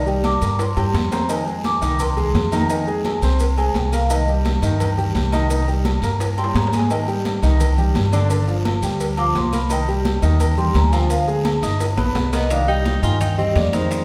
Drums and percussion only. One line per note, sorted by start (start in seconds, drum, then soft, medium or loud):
0.07 high conga soft
0.07 maracas soft
0.24 cowbell medium
0.24 high conga loud
0.24 low timbale medium
0.24 low agogo loud
0.24 short guiro medium
0.24 maracas soft
0.42 cowbell medium
0.42 high conga soft
0.42 short guiro medium
0.42 maracas medium
0.59 cowbell loud
0.59 high conga soft
0.59 high timbale medium
0.59 low agogo medium
0.59 long guiro medium
0.59 maracas medium
0.77 high conga soft
0.77 high timbale medium
0.77 low agogo loud
0.77 maracas soft
0.94 cowbell medium
0.94 high conga medium
0.94 low timbale medium
0.94 short guiro medium
0.94 maracas soft
1.11 cowbell medium
1.11 high conga medium
1.11 low timbale loud
1.11 low agogo medium
1.11 short guiro medium
1.11 maracas medium
1.29 cowbell loud
1.29 high conga soft
1.29 low agogo loud
1.29 long guiro medium
1.29 maracas medium
1.47 high conga soft
1.47 maracas soft
1.64 cowbell medium
1.64 high conga loud
1.64 low timbale medium
1.64 low agogo medium
1.64 short guiro medium
1.64 maracas soft
1.82 cowbell medium
1.82 high conga soft
1.82 short guiro medium
1.82 maracas medium
1.99 cowbell loud
1.99 high conga soft
1.99 low conga medium
1.99 low agogo loud
1.99 long guiro medium
1.99 maracas medium
2.17 high conga soft
2.17 low conga medium
2.17 maracas soft
2.35 cowbell medium
2.35 high conga medium
2.35 low timbale medium
2.35 low agogo medium
2.35 short guiro medium
2.35 maracas soft
2.52 cowbell medium
2.52 high conga medium
2.52 low agogo loud
2.52 short guiro medium
2.52 maracas medium
2.69 cowbell loud
2.69 high conga soft
2.69 low agogo medium
2.69 long guiro medium
2.69 maracas medium
2.87 high conga soft
2.87 maracas soft
3.04 cowbell medium
3.04 high conga medium
3.04 low timbale medium
3.04 low agogo loud
3.04 short guiro medium
3.04 maracas soft
3.22 cowbell medium
3.22 high conga soft
3.22 short guiro medium
3.22 maracas medium
3.39 cowbell loud
3.39 high conga soft
3.39 low agogo medium
3.39 long guiro medium
3.39 maracas medium
3.58 high conga soft
3.58 low agogo loud
3.58 maracas soft
3.75 cowbell medium
3.75 high conga medium
3.75 low timbale medium
3.75 short guiro medium
3.75 maracas soft
3.92 cowbell medium
3.92 high conga medium
3.92 low agogo medium
3.92 short guiro medium
3.92 maracas medium
4.10 cowbell loud
4.10 high conga soft
4.10 low agogo loud
4.10 long guiro medium
4.10 maracas loud
4.28 high conga soft
4.28 maracas soft
4.45 cowbell medium
4.45 high conga loud
4.45 low timbale medium
4.45 low agogo medium
4.45 short guiro medium
4.45 maracas soft
4.62 cowbell medium
4.62 high conga soft
4.62 short guiro medium
4.62 maracas medium
4.80 cowbell loud
4.80 high conga soft
4.80 low conga medium
4.80 low agogo loud
4.80 long guiro medium
4.80 maracas medium
4.98 high conga soft
4.98 low conga medium
4.98 maracas soft
5.15 cowbell medium
5.15 high conga medium
5.15 low timbale medium
5.15 low agogo medium
5.15 short guiro medium
5.15 maracas soft
5.32 cowbell medium
5.32 high conga medium
5.32 low agogo loud
5.32 short guiro medium
5.32 maracas medium
5.50 cowbell loud
5.50 high conga soft
5.50 low agogo medium
5.50 long guiro medium
5.50 maracas medium
5.68 maracas soft
5.85 cowbell medium
5.85 high conga loud
5.85 low timbale medium
5.85 low agogo loud
5.85 short guiro medium
5.85 maracas soft
6.02 cowbell medium
6.02 high conga soft
6.02 short guiro medium
6.02 maracas medium
6.20 cowbell loud
6.20 high conga soft
6.20 high timbale loud
6.20 low agogo medium
6.20 long guiro medium
6.20 maracas medium
6.38 high conga soft
6.38 low agogo loud
6.38 maracas soft
6.44 high timbale medium
6.55 cowbell medium
6.55 high conga medium
6.55 low timbale loud
6.55 short guiro medium
6.55 maracas soft
6.67 low timbale medium
6.72 cowbell medium
6.72 high conga medium
6.72 low agogo medium
6.72 short guiro medium
6.72 maracas medium
6.79 low timbale medium
6.90 cowbell loud
6.90 high conga soft
6.90 low agogo loud
6.90 long guiro medium
6.90 maracas medium
7.08 high conga soft
7.08 maracas soft
7.25 cowbell medium
7.25 high conga loud
7.25 low timbale medium
7.25 low agogo medium
7.25 short guiro medium
7.25 maracas soft
7.43 cowbell medium
7.43 high conga soft
7.43 short guiro medium
7.43 maracas medium
7.60 cowbell loud
7.60 high conga soft
7.60 low conga medium
7.60 low agogo loud
7.60 long guiro medium
7.60 maracas medium
7.78 high conga soft
7.78 low conga medium
7.78 maracas soft
7.95 cowbell medium
7.95 high conga medium
7.95 low timbale medium
7.95 low agogo medium
7.95 short guiro medium
7.95 maracas soft
8.13 cowbell medium
8.13 low agogo loud
8.13 short guiro medium
8.13 maracas medium
8.30 cowbell loud
8.30 high conga soft
8.30 low agogo medium
8.30 long guiro medium
8.30 maracas medium
8.48 high conga soft
8.48 maracas soft
8.65 cowbell medium
8.65 high conga loud
8.65 low timbale medium
8.65 low agogo loud
8.65 short guiro medium
8.65 maracas soft
8.83 cowbell medium
8.83 high conga soft
8.83 short guiro medium
8.83 maracas medium
9.00 cowbell loud
9.00 high conga soft
9.00 low agogo medium
9.00 long guiro medium
9.00 maracas medium
9.17 high conga soft
9.17 low agogo loud
9.17 maracas soft
9.35 cowbell medium
9.35 high conga medium
9.35 low timbale medium
9.35 short guiro medium
9.35 maracas soft
9.53 cowbell medium
9.53 high conga medium
9.53 low agogo medium
9.53 short guiro medium
9.53 maracas medium
9.70 cowbell loud
9.70 high conga soft
9.70 low agogo loud
9.70 long guiro medium
9.70 maracas medium
9.88 high conga soft
9.88 maracas soft
10.05 cowbell medium
10.05 high conga loud
10.05 low timbale medium
10.05 low agogo medium
10.05 short guiro medium
10.05 maracas soft
10.23 cowbell medium
10.23 high conga soft
10.23 short guiro medium
10.23 maracas medium
10.40 cowbell loud
10.40 high conga soft
10.40 low conga medium
10.40 low agogo loud
10.40 long guiro medium
10.40 maracas medium
10.58 high conga soft
10.58 low conga medium
10.58 maracas soft
10.75 cowbell medium
10.75 high conga medium
10.75 low timbale medium
10.75 low agogo medium
10.75 short guiro medium
10.75 maracas soft
10.93 cowbell medium
10.93 low agogo loud
10.93 short guiro medium
10.93 maracas medium
11.10 cowbell loud
11.10 high conga soft
11.10 low agogo medium
11.10 long guiro medium
11.10 maracas medium
11.28 high conga soft
11.28 maracas soft
11.45 cowbell medium
11.45 high conga loud
11.45 low timbale medium
11.45 low agogo loud
11.45 short guiro medium
11.45 maracas soft
11.62 cowbell medium
11.62 high conga soft
11.62 short guiro medium
11.62 maracas medium
11.80 cowbell loud
11.80 high conga soft
11.80 high timbale medium
11.80 low agogo medium
11.80 long guiro medium
11.80 maracas medium
11.97 low timbale medium
11.97 low agogo loud
11.97 maracas soft
12.15 cowbell medium
12.15 high conga medium
12.15 low timbale loud
12.15 short guiro medium
12.15 maracas soft
12.33 cowbell medium
12.33 low timbale medium
12.33 low agogo medium
12.33 short guiro medium
12.33 maracas medium
12.50 high bongo medium
12.50 high conga soft
12.50 high timbale loud
12.50 long guiro medium
12.50 maracas medium
12.68 high conga soft
12.68 maracas soft
12.85 high bongo medium
12.85 high conga loud
12.85 high timbale medium
12.85 low timbale medium
12.85 short guiro medium
12.85 maracas soft
13.03 high conga soft
13.03 high timbale medium
13.03 short guiro medium
13.03 maracas medium
13.21 high bongo medium
13.21 high conga soft
13.21 low conga medium
13.21 high timbale medium
13.21 long guiro medium
13.21 maracas medium
13.39 high conga soft
13.39 low conga medium
13.39 maracas soft
13.56 high bongo medium
13.56 low bongo medium
13.56 high conga medium
13.56 high timbale medium
13.56 low timbale medium
13.56 short guiro medium
13.56 maracas soft
13.73 high conga medium
13.73 high timbale loud
13.73 short guiro medium
13.73 maracas medium
13.91 high bongo medium
13.91 high conga soft
13.91 high timbale medium
13.91 long guiro medium
13.91 maracas medium